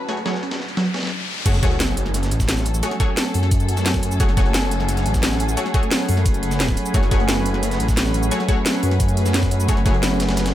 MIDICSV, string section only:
0, 0, Header, 1, 2, 480
1, 0, Start_track
1, 0, Key_signature, 3, "minor"
1, 0, Tempo, 342857
1, 119, Time_signature, 4, 2, 24, 8
1, 14756, End_track
2, 0, Start_track
2, 0, Title_t, "String section"
2, 0, Program_c, 0, 48
2, 0, Note_on_c, 0, 54, 78
2, 0, Note_on_c, 0, 61, 71
2, 0, Note_on_c, 0, 66, 76
2, 0, Note_on_c, 0, 71, 93
2, 1503, Note_off_c, 0, 54, 0
2, 1503, Note_off_c, 0, 61, 0
2, 1504, Note_off_c, 0, 66, 0
2, 1550, Note_off_c, 0, 71, 0
2, 2040, Note_on_c, 0, 54, 84
2, 2040, Note_on_c, 0, 61, 79
2, 2040, Note_on_c, 0, 69, 91
2, 2041, Note_on_c, 0, 68, 77
2, 9688, Note_off_c, 0, 69, 0
2, 9719, Note_on_c, 0, 71, 93
2, 14756, Note_off_c, 0, 54, 0
2, 14756, Note_off_c, 0, 61, 0
2, 14756, Note_off_c, 0, 68, 0
2, 14756, Note_off_c, 0, 71, 0
2, 14756, End_track
0, 0, End_of_file